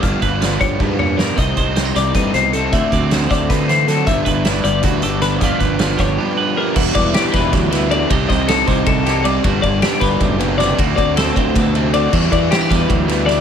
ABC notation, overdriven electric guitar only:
X:1
M:7/8
L:1/8
Q:1/4=156
K:G
V:1 name="Overdriven electric guitar"
[G,,D,=F,B,D] [F,B,D] [D,F,B,D]2 [G,,D,F,B,D] [F,B,D] [D,F,B,D] | [C,G,C_E] [G,CE] [C,G,CE]2 [C,G,CE] [G,CE] [C,G,CE] | [D,A,CF] [A,CF] [D,A,CF]2 [D,A,CF] [A,CF] [D,A,CF] | [G,,D,G,B,D] [G,B,D] [D,G,B,D]2 [G,,D,G,B,D] [G,B,D] [D,G,B,D] |
[G,,D,=F,B,D] [F,B,D] [D,F,B,D]2 [G,,D,F,B,D] [F,B,D] [D,F,B,D] | [E,G,B,E] [G,B,E] [E,G,B,E]3 [G,B,E] [E,G,B,E] | [C,G,C_E] [G,CE] [C,G,CE]3 [G,CE] [C,G,CE] | [G,,D,G,B,D] [G,B,D] [D,G,B,D]3 [G,B,D] [G,,D,G,B,D] |
[D,A,CF] [A,CF] [D,A,CF]3 [A,CF] [D,A,CF] | [E,G,B,E] [G,B,E] [E,G,B,E]3 [G,B,E] [E,G,B,E] |]